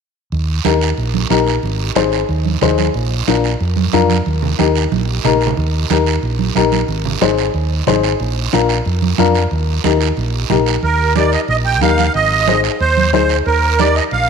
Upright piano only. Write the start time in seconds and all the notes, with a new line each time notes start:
0.64 D#4 G4 A#4
1.30 D#4 G4 A#4
1.96 D#4 G#4 C5
2.62 D#4 G#4 C5
3.28 D4 F4 A#4
3.93 D4 F4 A#4
4.58 D#4 G4 A#4
5.24 D#4 G4 A#4
5.90 D#4 G4 A#4
6.56 D#4 G4 A#4
7.21 D#4 G#4 C5
7.87 D#4 G#4 C5
8.53 D4 F4 A#4
9.18 D4 F4 A#4
9.84 D#4 G4 A#4
10.50 D#4 G4 A#4
11.16 D#4 G4 A#4
11.81 D#4 G4 A#4
12.48 D#4 G#4 C5
13.13 D#4 G#4 C5
13.79 D#4 G4 A#4